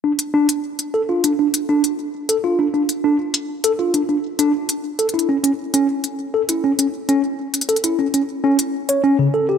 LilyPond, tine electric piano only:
\new Staff \with { instrumentName = "Tine electric piano" } { \time 4/4 \key a \minor \tempo 4 = 100 d'16 r16 d'16 r8. a'16 f'16 d'16 d'16 r16 d'16 r8. a'16 | f'16 d'16 d'16 r16 d'16 r8. a'16 f'16 d'16 d'16 r16 d'16 r8 | r16 a'16 e'16 cis'16 cis'16 r16 cis'16 r8. a'16 e'16 cis'16 cis'16 r16 cis'16 | r8. a'16 e'16 cis'16 cis'16 r16 cis'16 r8 cis''16 cis'16 cis16 a'16 g'16 | }